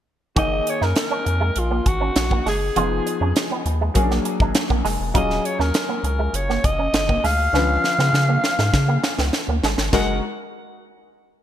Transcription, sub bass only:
0.37 F#1
0.81 F#2
1.26 F2
1.56 A#1
1.86 G#1
2.16 A#1
2.46 F#1
2.76 F1
3.21 F2
3.65 D#2
3.95 A#1
4.40 G#1
4.70 A#1
4.85 F1
5.00 E1
5.15 D#1
5.59 D#2
6.03 C#2
6.34 F#1
6.64 F1
6.93 F#1
7.24 D2
7.53 C#2
7.99 C#3
8.13 C#3
8.59 G#2
8.73 C#3
9.19 C#2
9.48 D2
9.63 G#1
9.78 G1
9.93 F#1

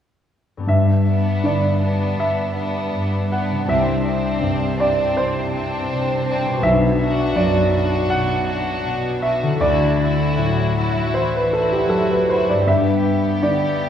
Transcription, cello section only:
0.68 G2
1.44 G2
2.19 G2
2.94 G2
3.68 C3
4.43 C3
5.16 C3
5.90 C3
6.62 B2
7.36 B2
8.10 B2
8.84 B2
9.60 D3
10.38 F#3
11.14 E3
11.90 F#3
12.67 G2

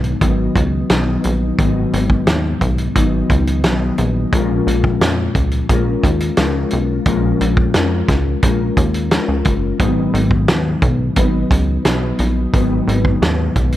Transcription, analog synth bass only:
Already playing: B1
0.21 G#1
0.56 C#2
0.90 B1
1.25 A#1
1.59 G#1
1.93 G#1
2.27 D#2
2.61 B1
2.96 G#1
3.30 C#2
3.64 B1
3.98 A#1
4.33 A#1
4.67 A#1
5.01 F2
5.35 C#2
5.69 A#1
6.04 D#2
6.38 C#2
6.73 B1
7.06 A#1
7.41 A#1
7.76 F2
8.09 C#2
8.43 A#1
8.77 D#2
9.29 C#2
9.46 F#1
9.80 G#1
10.14 G#1
10.48 D#2
10.82 B1
11.16 G#1
11.51 C#2
11.85 B1
12.20 A#1
12.54 G#1
12.87 G#1
13.22 D#2
13.56 B1

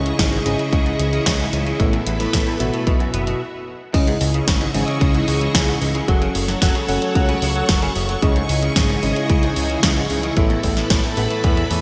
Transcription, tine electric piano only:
Already playing: C#3 C#4 E4 G#4 D#5
0.46 C#3 C#4 E4 G#4 D#5
1.80 A2 B3 E4 A4 E5
2.60 B2 B3 E4 F#4 E5
3.94 C#3 C#4 E4 G#4 D#5
4.74 C#3 C#4 E4 G#4 D#5
6.08 F#3 C#4 F#4 A4 F#5
6.89 F#3 C#4 F#4 A4 F#5
8.22 C#3 C#4 E4 G#4 D#5
9.03 C#3 C#4 E4 G#4 D#5
10.37 A2 B3 E4 A4 E5
11.17 A2 B3 E4 A4 E5

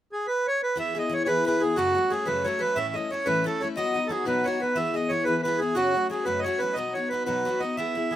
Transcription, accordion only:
0.13 G#4
0.27 B4
0.48 C#5
0.63 B4
0.79 E5
0.99 D#5
1.13 C#5
1.24 B4 C#5
1.46 B4
1.60 G#4
1.76 F#4
2.11 G#4
2.26 B4
2.44 C#5
2.60 B4
2.76 E5
2.94 D#5
3.11 C#5
3.26 B4
3.46 A4
3.61 C#5
3.76 D#5
4.07 G#4 A4
4.27 B4
4.45 C#5
4.61 B4
4.76 E5
4.95 D#5
5.09 C#5
5.24 B4
5.43 B4
5.58 G#4
5.75 F#4
6.11 G#4
6.25 B4
6.39 C#5 D#5
6.59 B4
6.73 D#5
6.94 C#5
7.09 B4
7.25 B4
7.60 D#5
7.77 E5
8.11 G#4

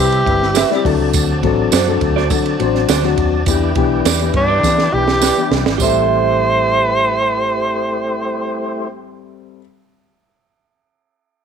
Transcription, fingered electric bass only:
Already playing: C3
0.26 G1
0.85 D2
0.99 C#2
1.14 D2
1.43 A1
1.73 F#2
2.01 D2
2.30 D3
2.60 A1
2.89 D2
3.18 D#2
3.47 E2
3.75 B1
4.05 E2
4.34 G2
4.63 E3
4.93 B1
5.51 C2
5.66 G#1
5.80 A1

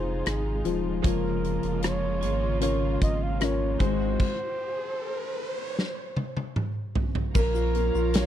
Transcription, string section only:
Already playing: C3 G#3 D#4 F4
1.04 C#3 A#3 F4
3.80 D#3 G#3 C4 F#4
7.33 A#4 C#5 F5 A#5

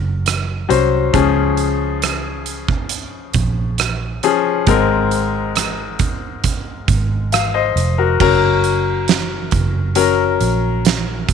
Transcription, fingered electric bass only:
Already playing: F#1
0.70 C2
1.14 C#2
3.34 A#1
4.67 G#1
6.88 G#1
7.76 F1
8.21 F#1
9.53 F#1
10.41 A#1

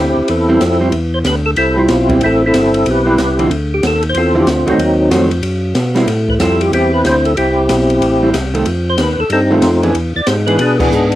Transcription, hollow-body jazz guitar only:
0.48 G3 C4 E4
0.80 G3 C4 E4
1.77 G3 C4 E4
2.09 G3 C4 E4
3.06 G3 C4 E4
3.39 D3 F3 C4 E4
4.34 D3 F3 C4 E4
4.66 D#3 A3 C4 F#4
5.10 D#3 A3 C4 F#4
5.95 G3 C4 E4
6.40 G3 C4 E4
8.23 G3 C4 E4
8.54 D#3 A3 C4
9.51 D#3 A3 C4
9.83 E3 B3 D4 G#4
10.47 E3 B3 D4 G#4
10.80 E3 B3 D4 G#4

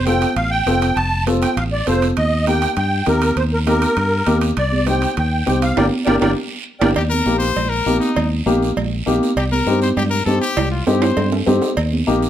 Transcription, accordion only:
0.06 G5
0.36 F5
0.51 G5
0.96 A5
1.42 G5
1.57 F5
1.72 D5
1.88 C5
2.18 D#5
2.48 G5
2.78 G5
3.08 A#4
3.37 C5
3.53 A#4
3.67 A#4
4.58 D5
4.88 G5
5.18 G5
5.63 F5
5.76 A#4 D5 G5
6.05 A#4 D5 G5
6.21 A#4 D5 G5
6.80 A#4 D5 G5

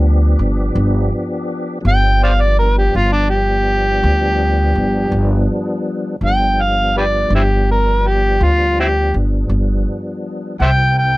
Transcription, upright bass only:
Already playing: D2
0.39 G1
0.75 G1
1.85 G1
2.95 G1
4.03 D2
4.75 G1
5.12 G1
6.21 G1
7.30 G1
8.41 D2
9.14 G1
9.49 G1
10.60 C2

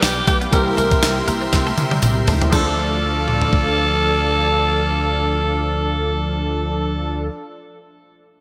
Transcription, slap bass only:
0.02 B1
0.27 B1
0.53 C2
0.77 C2
1.02 C2
1.28 C2
1.53 C2
1.78 C3
2.02 C2
2.27 C#2
2.53 D2

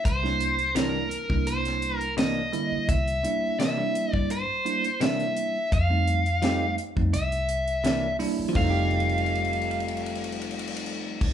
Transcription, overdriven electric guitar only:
0.05 C5
0.76 A#4
1.47 C5
1.97 A#4
2.18 D#5
2.89 E5
3.60 E5
4.14 D5
4.31 C5
5.02 E5
5.73 F5
7.14 E5
8.56 F5

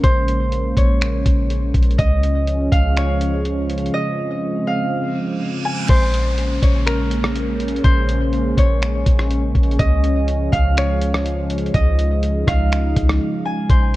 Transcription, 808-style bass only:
0.04 A#1
0.77 A#1
1.26 A#1
1.74 A#1
1.99 C#2
2.72 C#2
5.89 A#1
6.62 A#1
7.84 A#1
8.57 A#1
9.06 A#1
9.55 A#1
9.79 C#2
10.52 C#2
11.74 C#2
12.48 C#2
12.96 C#2
13.70 A#1

